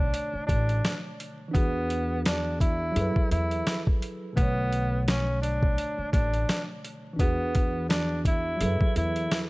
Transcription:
0.00 1.48 B2 medium
0.00 1.51 D3 medium
0.00 1.50 A3 medium
0.00 0.45 D4 medium
0.00 1.53 C#5 medium
0.14 closed hi-hat medium
0.34 muted upright bass stroke soft
0.47 0.79 A1 medium
0.47 0.99 D4 medium
0.47 kick medium
0.47 closed hi-hat medium
0.69 closed hi-hat soft
0.85 snare loud
0.85 closed hi-hat medium
1.20 closed hi-hat medium
1.48 2.90 E3 medium
1.48 2.91 D4 medium
1.53 2.92 E2 loud
1.53 2.21 B3 loud
1.53 2.93 F#4 medium
1.53 kick loud
1.53 closed hi-hat medium
1.58 2.94 G#4 medium
1.90 closed hi-hat medium
2.25 2.57 D4 medium
2.25 snare loud
2.25 closed hi-hat loud
2.60 3.27 E4 medium
2.60 kick medium
2.60 closed hi-hat medium
2.91 4.32 F#3 medium
2.91 4.33 E4 medium
2.96 3.13 F#2 loud
2.96 4.34 G#4 medium
2.96 4.35 A4 medium
2.96 closed hi-hat loud
3.01 4.37 B4 medium
3.16 muted upright bass stroke soft
3.16 kick medium
3.31 3.61 E2 medium
3.31 3.83 E4 medium
3.31 closed hi-hat medium
3.51 closed hi-hat soft
3.67 snare loud
3.67 closed hi-hat medium
3.87 kick medium
4.02 closed hi-hat medium
4.33 7.13 B2 medium
4.33 7.15 A3 medium
4.33 5.03 B3 loud
4.37 5.74 B1 loud
4.37 7.16 D3 medium
4.37 kick loud
4.37 closed hi-hat medium
4.42 7.18 C#5 medium
4.72 closed hi-hat medium
5.08 5.40 C#4 medium
5.08 snare loud
5.08 closed hi-hat medium
5.41 6.09 D4 medium
5.41 closed hi-hat medium
5.63 kick medium
5.78 closed hi-hat loud
5.98 muted upright bass stroke soft
6.12 6.43 A1 medium
6.12 6.64 D4 medium
6.12 kick medium
6.12 closed hi-hat medium
6.33 closed hi-hat soft
6.49 snare loud
6.49 closed hi-hat medium
6.85 closed hi-hat medium
7.13 8.54 E3 medium
7.13 8.56 D4 medium
7.19 8.56 E2 loud
7.19 7.86 B3 loud
7.19 8.58 F#4 medium
7.19 8.59 G#4 medium
7.19 kick loud
7.19 closed hi-hat medium
7.55 kick medium
7.55 closed hi-hat medium
7.89 8.21 D4 medium
7.89 snare loud
7.89 closed hi-hat loud
8.25 8.93 E4 medium
8.25 kick medium
8.25 closed hi-hat medium
8.56 9.50 F#3 medium
8.56 9.50 E4 medium
8.61 8.77 F#2 loud
8.61 9.50 G#4 medium
8.61 9.50 A4 medium
8.61 closed hi-hat loud
8.66 9.50 B4 medium
8.81 muted upright bass stroke soft
8.81 kick medium
8.96 9.26 E2 medium
8.96 9.48 E4 medium
8.96 closed hi-hat medium
9.16 closed hi-hat soft
9.31 snare loud
9.31 closed hi-hat medium

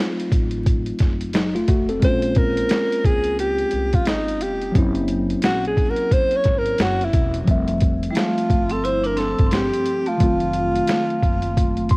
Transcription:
0.00 1.29 F#3 medium
0.00 1.29 A3 medium
0.00 1.30 C4 medium
0.00 1.31 D#4 medium
0.00 1.32 F4 medium
0.20 closed hi-hat medium
0.32 0.90 A1 medium
0.32 kick medium
0.32 closed hi-hat medium
0.51 closed hi-hat medium
0.66 kick medium
0.66 closed hi-hat medium
0.86 closed hi-hat soft
0.99 1.58 F#1 medium
0.99 kick medium
0.99 snare soft
0.99 closed hi-hat medium
1.21 closed hi-hat soft
1.33 1.54 F#3 medium
1.33 1.54 D#4 medium
1.33 snare loud
1.33 closed hi-hat medium
1.55 1.68 A3 medium
1.55 1.68 F4 medium
1.55 closed hi-hat medium
1.68 1.97 F1 medium
1.68 1.88 A3 medium
1.68 1.88 F#4 medium
1.68 kick medium
1.68 closed hi-hat medium
1.89 2.02 C4 soft
1.89 2.21 A4 medium
1.89 closed hi-hat soft
2.00 2.60 A#1 loud
2.00 4.70 G#3 medium
2.00 4.71 A#3 medium
2.00 4.71 C4 medium
2.00 kick loud
2.00 closed hi-hat medium
2.04 4.72 C#4 medium
2.04 4.73 F4 medium
2.04 2.39 C5 loud
2.22 closed hi-hat medium
2.35 3.07 A#4 loud
2.35 kick medium
2.35 closed hi-hat medium
2.57 closed hi-hat medium
2.69 snare loud
2.69 closed hi-hat loud
2.92 closed hi-hat medium
3.04 3.63 C#2 medium
3.04 3.39 G#4 loud
3.04 kick loud
3.04 closed hi-hat medium
3.24 closed hi-hat medium
3.39 3.96 G4 loud
3.39 closed hi-hat medium
3.59 closed hi-hat soft
3.71 4.06 C2 medium
3.71 closed hi-hat medium
3.93 4.09 F4 medium
3.93 kick medium
3.93 closed hi-hat medium
4.06 4.41 G#1 medium
4.06 4.44 D#4 medium
4.06 snare loud
4.06 closed hi-hat medium
4.29 closed hi-hat medium
4.41 4.70 F1 medium
4.41 4.76 G4 medium
4.41 closed hi-hat medium
4.62 closed hi-hat soft
4.72 5.33 F#1 loud
4.72 7.42 F#3 medium
4.72 7.43 A#3 medium
4.72 7.44 C4 medium
4.72 kick loud
4.72 closed hi-hat medium
4.77 7.45 C#4 medium
4.77 7.46 E4 medium
4.95 closed hi-hat medium
5.08 closed hi-hat medium
5.30 closed hi-hat medium
5.42 5.72 A#1 medium
5.42 5.65 F#4 medium
5.42 snare loud
5.42 closed hi-hat loud
5.65 5.91 G#4 medium
5.65 closed hi-hat medium
5.77 kick loud
5.77 closed hi-hat medium
5.90 6.15 A#4 medium
5.97 closed hi-hat medium
6.12 6.38 C5 loud
6.12 kick medium
6.12 closed hi-hat medium
6.31 closed hi-hat soft
6.36 6.60 C#5 loud
6.44 6.75 G#1 medium
6.44 kick medium
6.44 snare soft
6.44 closed hi-hat medium
6.58 6.83 A#4 loud
6.66 closed hi-hat medium
6.78 7.08 F#1 medium
6.78 7.06 F#4 loud
6.78 snare loud
6.78 closed hi-hat medium
7.01 7.38 E4 medium
7.01 closed hi-hat medium
7.13 7.43 E1 medium
7.13 kick loud
7.13 closed hi-hat medium
7.34 closed hi-hat medium
7.44 8.06 F1 medium
7.44 10.15 F3 medium
7.44 10.16 G3 medium
7.44 10.17 A3 medium
7.44 kick loud
7.44 closed hi-hat medium
7.49 10.17 C4 medium
7.49 10.18 E5 medium
7.68 closed hi-hat medium
7.80 kick medium
7.80 closed hi-hat medium
8.03 closed hi-hat medium
8.10 8.16 G3 soft
8.10 8.19 E4 medium
8.15 8.71 A3 medium
8.15 8.73 F4 medium
8.15 snare loud
8.15 closed hi-hat medium
8.38 closed hi-hat medium
8.50 9.35 G1 medium
8.50 kick medium
8.50 closed hi-hat medium
8.69 8.84 C4 medium
8.69 8.86 A4 medium
8.69 closed hi-hat medium
8.84 9.05 E4 medium
8.84 9.07 C5 loud
8.84 closed hi-hat medium
9.04 9.18 D4 medium
9.04 9.20 A#4 medium
9.04 closed hi-hat soft
9.17 9.45 C4 medium
9.17 9.48 A4 medium
9.17 snare soft
9.17 closed hi-hat medium
9.38 9.68 G1 medium
9.38 kick medium
9.38 closed hi-hat soft
9.47 9.50 C4 medium
9.47 9.55 A4 medium
9.51 10.07 C4 medium
9.51 10.09 G4 medium
9.51 snare loud
9.51 closed hi-hat medium
9.73 closed hi-hat medium
9.86 closed hi-hat medium
10.06 11.97 A3 medium
10.06 11.97 F4 medium
10.06 closed hi-hat soft
10.17 10.78 F1 loud
10.17 11.97 D#3 medium
10.17 11.97 F#3 medium
10.17 11.97 A3 medium
10.17 kick medium
10.17 closed hi-hat medium
10.22 11.97 C4 medium
10.22 11.97 F4 medium
10.40 closed hi-hat soft
10.53 closed hi-hat medium
10.75 closed hi-hat medium
10.87 snare loud
10.87 closed hi-hat loud
11.10 closed hi-hat medium
11.23 11.97 F#1 medium
11.23 kick loud
11.23 closed hi-hat medium
11.42 closed hi-hat medium
11.57 kick medium
11.57 closed hi-hat medium
11.77 closed hi-hat soft
11.89 11.97 C6 medium
11.89 kick medium
11.89 closed hi-hat medium

